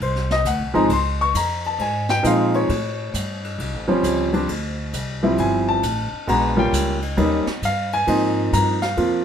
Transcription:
0.00 0.44 C2 medium
0.00 0.30 C5 medium
0.00 kick soft
0.00 ride medium
0.16 snare soft
0.31 0.46 D#5 loud
0.31 snare medium
0.45 0.61 D2 medium
0.45 0.75 F#5 medium
0.45 kick soft
0.45 hi-hat pedal medium
0.45 ride medium
0.60 0.74 C2 medium
0.74 0.89 G#1 medium
0.74 0.88 F3 medium
0.74 0.88 G#3 medium
0.74 0.88 C4 medium
0.74 0.88 D#4 medium
0.74 0.90 A#5 loud
0.74 ride soft
0.89 1.33 C#2 medium
0.89 1.20 C6 medium
0.89 kick soft
0.89 ride medium
1.21 1.35 C#6 loud
1.34 1.78 F2 medium
1.34 1.64 A#5 medium
1.34 kick soft
1.34 hi-hat pedal medium
1.34 ride medium
1.64 1.80 A5 medium
1.64 ride soft
1.79 2.23 G#2 medium
1.79 2.09 G#5 medium
1.79 kick soft
1.79 ride medium
2.09 2.25 G5 loud
2.09 snare medium
2.23 2.68 A#2 medium
2.23 2.69 F3 medium
2.23 2.69 G#3 medium
2.23 2.69 C4 medium
2.23 2.69 D#4 medium
2.23 kick soft
2.23 hi-hat pedal medium
2.23 ride medium
2.27 2.54 F5 medium
2.54 3.56 C#5 medium
2.54 ride soft
2.69 3.13 A2 medium
2.69 kick soft
2.69 ride medium
3.14 3.57 G2 loud
3.14 kick soft
3.14 hi-hat pedal medium
3.14 ride medium
3.44 ride medium
3.58 3.74 C2 medium
3.58 kick soft
3.58 ride medium
3.74 3.87 A1 medium
3.88 4.02 G1 medium
3.88 4.30 F3 medium
3.88 4.30 G3 medium
3.88 4.30 C4 medium
3.88 4.31 C#4 medium
4.03 4.47 C#2 medium
4.03 kick soft
4.03 hi-hat pedal medium
4.03 ride medium
4.33 4.47 F3 medium
4.33 4.47 G3 medium
4.33 4.47 C4 medium
4.33 4.47 D4 medium
4.33 ride soft
4.48 4.92 D2 medium
4.48 kick soft
4.48 ride medium
4.93 5.37 C2 medium
4.93 kick soft
4.93 hi-hat pedal medium
4.93 ride medium
5.23 5.80 F3 medium
5.23 5.80 G3 medium
5.23 5.80 C4 medium
5.23 5.80 E4 medium
5.38 5.82 G1 medium
5.38 5.68 G#5 medium
5.38 kick soft
5.38 ride medium
5.69 6.24 A5 loud
5.83 6.11 A1 medium
5.83 kick soft
5.83 hi-hat pedal soft
5.83 ride medium
6.12 muted upright bass stroke soft
6.27 6.71 A#1 medium
6.27 6.54 G#3 medium
6.27 6.55 B3 medium
6.27 6.55 D4 medium
6.27 6.55 F#4 medium
6.27 6.57 A#5 loud
6.27 kick soft
6.27 ride medium
6.57 6.96 G3 medium
6.57 6.96 A#3 medium
6.57 6.96 C#4 medium
6.57 6.96 F4 medium
6.57 7.14 G5 medium
6.72 7.16 C#2 medium
6.72 kick soft
6.72 hi-hat pedal medium
6.72 ride medium
7.02 ride medium
7.17 7.45 D#2 medium
7.17 7.44 G3 medium
7.17 7.44 A#3 medium
7.17 7.44 C#4 medium
7.17 7.44 D#4 medium
7.17 kick soft
7.17 ride medium
7.46 muted upright bass stroke soft
7.46 snare medium
7.62 8.06 G2 medium
7.62 7.93 F5 loud
7.62 kick soft
7.62 hi-hat pedal medium
7.62 ride medium
7.93 8.49 G#5 loud
7.93 ride medium
8.07 8.51 G#2 medium
8.07 8.76 F3 medium
8.07 8.76 A#3 medium
8.07 8.76 C4 medium
8.07 8.76 D#4 medium
8.07 kick soft
8.07 ride medium
8.53 8.96 G2 medium
8.53 8.81 A#5 loud
8.53 kick soft
8.53 hi-hat pedal medium
8.53 ride medium
8.82 9.25 F5 medium
8.82 snare soft
8.82 ride medium
8.97 9.25 F2 medium
8.97 9.24 F3 medium
8.97 9.24 A#3 medium
8.97 9.24 C4 medium
8.97 9.24 F4 medium
8.97 kick soft
8.97 ride medium

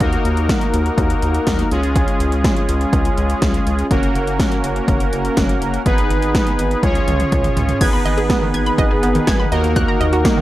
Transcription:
0.00 0.18 D#2 loud
0.00 1.68 A#3 medium
0.00 1.68 D#4 medium
0.00 1.68 F#4 medium
0.00 1.68 A#4 medium
0.00 kick loud
0.00 closed hi-hat medium
0.13 closed hi-hat soft
0.25 0.50 D#2 medium
0.25 closed hi-hat medium
0.37 closed hi-hat soft
0.49 kick loud
0.49 snare loud
0.49 closed hi-hat medium
0.61 closed hi-hat soft
0.74 0.91 D#2 medium
0.74 closed hi-hat medium
0.86 closed hi-hat soft
0.98 1.15 D#2 loud
0.98 kick loud
0.98 closed hi-hat medium
1.10 closed hi-hat medium
1.22 1.39 D#2 medium
1.22 closed hi-hat medium
1.34 closed hi-hat medium
1.47 1.64 D#2 loud
1.47 kick loud
1.47 snare loud
1.47 closed hi-hat medium
1.59 closed hi-hat medium
1.71 2.05 C#2 loud
1.71 3.87 G#3 medium
1.71 3.87 C#4 medium
1.71 3.87 F4 medium
1.71 3.87 G#4 medium
1.71 closed hi-hat medium
1.83 closed hi-hat medium
1.96 kick loud
1.96 closed hi-hat medium
2.08 closed hi-hat soft
2.20 2.46 C#2 loud
2.20 closed hi-hat medium
2.32 closed hi-hat medium
2.44 kick loud
2.44 snare loud
2.44 closed hi-hat medium
2.56 closed hi-hat medium
2.69 2.86 C#2 medium
2.69 closed hi-hat medium
2.81 closed hi-hat soft
2.93 3.10 C#2 loud
2.93 kick loud
2.93 closed hi-hat medium
3.05 closed hi-hat medium
3.18 3.35 C#2 loud
3.18 closed hi-hat medium
3.30 closed hi-hat medium
3.42 3.59 C#2 loud
3.42 kick loud
3.42 snare loud
3.42 closed hi-hat medium
3.54 closed hi-hat medium
3.66 3.83 C#2 loud
3.66 closed hi-hat medium
3.79 closed hi-hat medium
3.91 4.08 F#1 loud
3.91 5.82 A#3 medium
3.91 5.82 C#4 medium
3.91 5.82 F#4 medium
3.91 5.82 A#4 medium
3.91 kick loud
3.91 closed hi-hat medium
4.03 closed hi-hat soft
4.15 4.41 F#1 loud
4.15 closed hi-hat medium
4.27 closed hi-hat soft
4.40 kick loud
4.40 snare loud
4.40 closed hi-hat medium
4.52 closed hi-hat soft
4.64 4.81 F#1 medium
4.64 closed hi-hat medium
4.76 closed hi-hat soft
4.88 5.05 F#1 loud
4.88 kick loud
4.88 closed hi-hat medium
5.00 closed hi-hat medium
5.13 5.30 F#1 loud
5.13 closed hi-hat medium
5.25 closed hi-hat medium
5.37 5.54 F#1 loud
5.37 kick loud
5.37 snare loud
5.37 closed hi-hat medium
5.49 closed hi-hat medium
5.61 5.78 F#1 loud
5.61 closed hi-hat medium
5.74 closed hi-hat medium
5.86 6.03 G#1 loud
5.86 6.81 B3 medium
5.86 6.81 D#4 medium
5.86 6.81 G#4 medium
5.86 6.81 B4 medium
5.86 kick loud
5.86 closed hi-hat medium
5.98 closed hi-hat soft
6.10 6.36 G#1 loud
6.10 closed hi-hat medium
6.22 closed hi-hat soft
6.35 kick loud
6.35 snare loud
6.35 closed hi-hat medium
6.47 closed hi-hat medium
6.59 6.76 G#1 medium
6.59 closed hi-hat medium
6.71 closed hi-hat soft
6.83 7.00 C#2 loud
6.83 7.79 C#4 medium
6.83 7.79 F4 medium
6.83 7.79 G#4 medium
6.83 7.79 C#5 medium
6.83 kick loud
6.83 closed hi-hat medium
6.83 high tom medium
6.95 closed hi-hat medium
6.95 high tom medium
7.08 7.25 C#2 loud
7.08 closed hi-hat medium
7.08 mid tom medium
7.20 closed hi-hat medium
7.20 mid tom medium
7.32 7.49 C#2 loud
7.32 kick loud
7.32 closed hi-hat medium
7.32 mid tom medium
7.44 closed hi-hat medium
7.44 mid tom medium
7.56 7.74 C#2 medium
7.56 closed hi-hat medium
7.56 floor tom medium
7.69 closed hi-hat medium
7.69 floor tom medium
7.81 7.98 G#1 loud
7.81 10.41 D#3 medium
7.81 9.50 B3 medium
7.81 9.48 B3 medium
7.81 9.48 D#4 medium
7.81 9.50 G#4 medium
7.81 9.48 G#4 medium
7.81 9.48 B4 medium
7.81 7.91 G#6 loud
7.81 kick loud
7.81 closed hi-hat medium
7.81 crash medium
7.93 8.03 B5 medium
8.05 8.31 G#1 loud
8.05 8.15 D#5 medium
8.05 closed hi-hat medium
8.18 8.27 G#4 medium
8.18 closed hi-hat soft
8.30 8.40 B3 medium
8.30 kick loud
8.30 snare loud
8.30 closed hi-hat medium
8.42 8.52 D#3 medium
8.54 8.71 G#1 loud
8.54 8.64 G#6 medium
8.54 closed hi-hat medium
8.66 8.76 B5 medium
8.66 closed hi-hat soft
8.78 8.95 G#1 loud
8.78 8.88 D#5 medium
8.78 kick loud
8.78 closed hi-hat medium
8.91 9.01 G#4 medium
9.03 9.20 G#1 medium
9.03 9.13 B3 medium
9.03 closed hi-hat medium
9.15 9.25 D#3 medium
9.15 closed hi-hat medium
9.27 9.44 G#1 loud
9.27 9.37 G#6 loud
9.27 kick loud
9.27 snare loud
9.27 closed hi-hat medium
9.40 9.49 B5 medium
9.52 9.86 D#2 loud
9.52 10.41 A#3 medium
9.52 10.41 D#4 medium
9.52 10.41 F#4 medium
9.52 10.41 A#4 medium
9.52 9.62 D#5 medium
9.52 closed hi-hat medium
9.64 closed hi-hat medium
9.76 9.86 F#6 loud
9.76 kick loud
9.76 closed hi-hat medium
9.88 9.98 A#5 medium
10.00 10.26 D#2 loud
10.00 10.10 D#5 medium
10.00 closed hi-hat medium
10.13 10.23 F#4 medium
10.13 closed hi-hat medium
10.25 10.35 A#3 medium
10.25 kick loud
10.25 snare loud
10.25 closed hi-hat medium
10.37 10.41 D#3 medium

